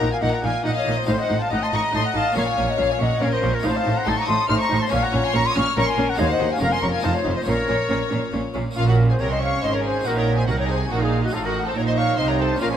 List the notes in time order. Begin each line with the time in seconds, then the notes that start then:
Already playing: C4 D#4 F#4 A#4 F#5 A#5
0.00 A#1 A#2 D#4
0.11 F5 G#5
0.21 A#1 A#2 D#4 A#4 D#5 F#5
0.31 F#5 A#5
0.42 A#1 A#2 D#4 F5 G#5
0.64 A#1 A#2 D#4 D#5 F#5
0.75 C#5 F5
0.86 A#1 A#2 D#4
0.96 C5 D#5
1.03 C4 D#4 F4 F5
1.08 A1 A2 C5
1.18 D#5 F#5
1.29 A1 A2 D#4
1.40 F5 A5
1.50 A1 A2 D#4 D#5 F#5 A#5
1.62 A5 C6
1.72 A1 A2 D#4 A#5 C#6
1.92 A1 A2 D#4 A5 C6
2.04 F#5 A#5
2.13 A1 A2 D#4 F5 A5
2.32 A#3 C#4 F4
2.36 A#1 A#2 C#5 F5
2.47 F5 G#5
2.57 A#1 A#2 C#4
2.69 D#5 F#5
2.78 A#1 A#2 C#4 C#5 F5
2.90 F5 G#5
2.99 A#1 A#2 C#4 D#5 F#5
3.21 A#1 A#2 C#4 A#4 C#5 F5
3.32 C5 D#5
3.41 A#1 A#2 C#4
3.53 A#4 C#5
3.60 C4 D#4 F4
3.64 A1 A2 C5 F5
3.74 F5 A5
3.84 A1 A2 D#4
3.96 F#5 A#5
4.05 A1 A2 D#4 A4 A5 C6
4.17 A#5 C#6
4.26 A1 A2 D#4 C6 D#6
4.48 A1 A2 D#4 C5 C6 F6
4.60 A#5 C#6
4.70 A1 A2 D#4
4.81 A5 C6
4.87 A#3 C#4 F4
4.91 A#1 A#2 C#4 C#5 F5 G#5
5.03 F#5 A#5
5.12 A#1 A#2 C#4
5.24 G#5 C6
5.34 A#1 A#2 C#4 A#5 C#6
5.45 C6 D#6
5.55 A#1 A#2 C#4 C#6 F6
5.76 A#1 A#2 C#4 A#4 A#5 C#6
5.87 G#5 C6
5.96 A#1 A#2 C#4
6.09 F#5 A#5
6.15 A#3 D#4 F#4 C5 C#5 F5
6.19 D#2
6.30 D#5 F#5
6.39 D#2 D#4
6.51 F5 G#5
6.56 A#3 C#4 F4
6.60 F1 F2 A#4 F5 A#5
6.72 G#5 C6
6.81 F1 F2 C#4 A#5 C#6
6.93 F5 G#5
6.99 A3 D#4 F4 C5 F5
7.03 F1 F2 A5
7.13 C#5 F5
7.24 F1 F2 D#4
7.36 C5 D#5
7.42 A#3 C#4 F4
7.46 A#1 A#2 C#4 A#4 C#5
7.67 A#1 A#2 C#4
7.89 A#1 A#2 C#4
8.10 A#1 A#2 C#4
8.32 A#1 A#2 C#4
8.54 A#1 A#2 C#4
8.71 A#3 C#4 F4
8.75 A#1 A#2 C#4 F4 A#4 F5
8.87 F#4 A#4 F#5
9.09 G#4 C5 G#5
9.18 C2 C3 C#4 A#4 C#5 A#5
9.30 C5 D#5 C6
9.40 C#5 F5 C#6
9.62 G#1 G#2 C5 D#5 C6
9.73 A#4 C#5 A#5
9.83 G#4 C5 G#5
10.01 C4 D#4 F#4
10.05 A#1 A#2 A#4 F#5
10.16 A#4 C#5 A#5
10.36 G#4 C5 G#5
10.47 C2 C3 D#4 F#4 A#4 F#5
10.57 A#4 C#5 A#5
10.68 G#4 C5 G#5
10.90 A#1 A#2 D#4 F#4 A#4 F#5
11.00 F4 G#4 F5
11.22 D#4 F#4 D#5
11.28 C4 D#4 F4
11.32 A1 A2 D#4 F4 A4 F5
11.44 F#4 A#4 F#5
11.65 A4 C5 A5
11.76 A#1 A#2 A#4 C#5 A#5
11.87 C5 D#5 C6
11.97 C#5 F5 C#6
12.17 C2 C3 D#4 C5 D#5 C6
12.28 A#4 C#5 A#5
12.39 A4 C5 A5
12.56 A#3 C#4 F4
12.61 A#1 A#2 F4 A#4 F5
12.71 G#4 C5 G#5